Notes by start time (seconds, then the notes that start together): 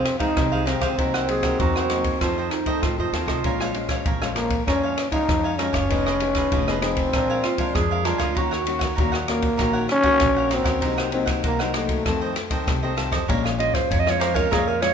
Already playing: F2 C4
0.05 muted cavaquinho stroke, cross-stick, ride
0.19 D#3 G#3 C4 D#4 G#4 C5 F5, kick, ride
0.37 C2 C3, kick, cross-stick, ride
0.52 G#4 C5 F5
0.65 D#3 G#3 C4 D#4 G#4 C5 F5, cross-stick, ride
0.80 C#2 G#4 C5 F5, kick, cross-stick, ride
0.98 C2 C3 F#3 A#3 D#4 A#4 C5 F#5, kick, ride
1.14 A#4 C5 F#5, cross-stick
1.27 F#3 A#3 D#4 G#4, muted cavaquinho stroke, ride
1.43 A#4 C5 F#5, kick, cross-stick, ride
1.59 E2 C3 D#4 F#4 A#4 C5 F#5, kick, ride
1.76 A#4 C5 F#5, cross-stick
1.89 F#3 A#3 D#4, cross-stick, ride
2.04 kick, ride
2.20 F2 D#3 A3 C4 F4 A4 C5 D#5, kick, cross-stick, ride
2.38 A4 C5 D#5
2.50 D#4, muted cavaquinho stroke, cross-stick, ride
2.66 D#3 A3 C4 A4 C5 D#5, kick, ride
2.82 A2 C3 F4, kick, cross-stick, ride
2.98 F2 F4 A4 C5 D#5
3.12 D#2 D#3 A3 C4 F4 A4 C5 D#5, cross-stick, ride
3.26 C2 A4 C5 D#5, kick, cross-stick, ride
3.44 A#1 A#2 F3 G#3 C#4 A#4 C#5 F5 G#5, kick, ride
3.60 F3 G#3 C#4 C#5 F5 G#5, cross-stick
3.74 F3 G#3 C#4, muted cavaquinho stroke, ride
3.89 C#5 F5 G#5, kick, cross-stick, ride
4.06 A#1 F2 A#4 C#5 F5 G#5, kick, ride
4.21 F3 G#3 C#4 C#5 F5 G#5, cross-stick
4.36 F3 G#3 A#3 C#4, cross-stick, ride
4.50 kick, ride
4.67 F2 A#2 F3 G#3 C#4 A#4 C#5 F5 G#5, kick, cross-stick, ride
4.83 C#5 F5 G#5
4.97 muted cavaquinho stroke, cross-stick, ride
5.11 F3 G#3 C#4 D#4 C#5 F5 G#5, kick, ride
5.29 F2, kick, cross-stick, ride
5.44 C#5 F5 G#5
5.58 F3 G#3 C#4 A#4 C#5 F5 G#5, cross-stick, ride
5.73 F#1 C#5 F5 G#5, kick, cross-stick, ride
5.90 F1 F3 B3 D#4 F4 G#4 B4 D#5, kick, ride
6.06 G#4 B4 D#5, cross-stick
6.20 B3 D#4 G#4, muted cavaquinho stroke, ride
6.35 G#4 B4 D#5, kick, cross-stick, ride
6.52 F1 F3 F4 G#4 B4 D#5, kick, ride
6.67 B3 D#4 G#4 B4 D#5, cross-stick
6.81 B3 C4 D#4 G#4, cross-stick, ride
6.97 kick, ride
7.13 A#1 A#2 F3 G#3 D4 A#4 F5 G#5, kick, cross-stick, ride
7.30 A#4 F5 G#5
7.44 F4, muted cavaquinho stroke, cross-stick, ride
7.58 F3 G#3 D4 A#4 F5 G#5, kick, ride
7.75 F2 G#4, kick, cross-stick, ride
7.91 A#4 F5 G#5
8.04 F3 G#3 D4 F4 A#4 F5 G#5, cross-stick, ride
8.18 D2 A#4 F5 G#5, kick, cross-stick, ride
8.35 D#2 D#3 A#3 C#4 D#4 F#4 A#4 C#5 F#5, kick, ride
8.39 F#4
8.51 A#4 C#5 F#5, cross-stick
8.65 A#3 C#4 F#4, muted cavaquinho stroke, ride
8.79 A#4 C#5 F#5, kick, cross-stick, ride
8.95 D#2 A#2 D#4 A#4 C#5 F#5, kick, ride
8.99 A#3 C#4 F#4
9.12 A#4 C#5 F#5, cross-stick
9.28 A#3 C#4 F#4, cross-stick, ride
9.42 kick, ride
9.57 A#1 D#3 A#3 C#4 D#4 F#4 A#4 C#5 F#5, kick, cross-stick, ride
9.73 A#4 C#5 F#5
9.88 C#4, muted cavaquinho stroke, cross-stick, ride
10.03 A#3 C#4 F#4 A#4 C#5 F#5, kick, ride
10.20 A#1 A#2, kick, cross-stick, ride
10.36 A#4 C#5 F#5
10.49 A#3 C#4 D#4 F#4 A#4 C#5 F#5, cross-stick, ride
10.54 C4
10.64 D#2 A#4 C#5 F#5, kick, cross-stick, ride
10.81 C2 C3 F#3 A#3 D#4 A#4 C5 F#5, kick, ride
10.97 A#4 C5 F#5, cross-stick
11.12 F#3 A#3 C4 D#4, muted cavaquinho stroke, ride
11.26 A#4 C5 F#5, kick, cross-stick, ride
11.43 C2 C3 A#3 D#4 A#4 C5 F#5, kick, ride
11.59 F#3 A#3 D#4 A#4 C5 F#5, cross-stick
11.74 F#3 A3 A#3 D#4, cross-stick, ride
11.89 kick, ride
12.06 F2 D#3 A3 C4 F4 A4 C5 D#5, kick, cross-stick, ride
12.21 A4 C5 D#5
12.36 muted cavaquinho stroke, cross-stick, ride
12.50 D#3 A3 C4 A4 C5 D#5, kick, ride
12.67 C2 C3, kick, cross-stick, ride
12.83 D#3 A3 C4 A4 C5 D#5
12.96 D#3 A3 C4 F4 A4 C5 D#5, cross-stick, ride
13.11 F2 A4 C5 D#5, kick, cross-stick, ride
13.28 A#1 A#2 G#3 C#4 F4 A#4 C#5 F5 G#5, kick, ride
13.44 C#5 F5 G#5, cross-stick
13.58 G#3 C#4 F4 D#5, muted cavaquinho stroke, ride
13.73 F2 C5, kick, cross-stick, ride
13.90 F2 C#5, kick, ride
14.00 D#5
14.06 G#3 C#4 F4 C#5 F5 G#5, cross-stick
14.10 C#5
14.20 A#4 C5 C#5 F5 G#5, cross-stick, ride
14.34 G#3 C#4 F4 A#4 C#5 F5 G#5, kick, ride
14.51 F2 A#2 G#3 C#4 F4 G#4 A#4 C#5 F5 G#5, kick, cross-stick, ride
14.67 A#4 C#5 F5 G#5
14.82 G#3 C#4 F4 C#5, muted cavaquinho stroke, cross-stick, ride